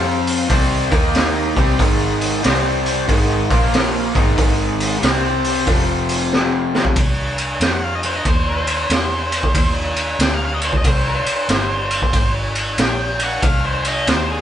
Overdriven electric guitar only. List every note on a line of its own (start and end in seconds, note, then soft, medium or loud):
0.00 0.49 F3 medium
0.00 0.49 C4 loud
0.00 0.50 F4 loud
0.49 0.90 C3 medium
0.49 0.91 G3 loud
0.49 0.91 C4 loud
0.90 1.55 D#3 medium
0.90 1.55 A#3 medium
0.90 1.55 D#4 loud
1.56 1.78 C3 medium
1.56 1.79 G3 medium
1.56 1.79 C4 loud
1.79 2.43 G#2 loud
1.79 2.42 D#3 loud
1.79 2.43 G#3 loud
2.43 3.07 C3 medium
2.43 3.07 G3 loud
2.43 3.08 C4 loud
3.07 3.48 G#2 medium
3.07 3.48 D#3 loud
3.07 3.49 G#3 loud
3.49 4.13 A#2 medium
3.49 4.13 F3 medium
3.49 4.14 A#3 loud
4.14 4.34 G#2 medium
4.14 4.35 D#3 loud
4.14 4.36 G#3 loud
4.35 5.00 G#2 medium
4.35 5.01 D#3 loud
4.35 5.01 G#3 loud
5.01 5.65 C3 medium
5.01 5.66 G3 loud
5.01 5.66 C4 loud
5.66 6.95 F2 medium
5.66 6.95 C3 medium
5.66 6.96 F3 loud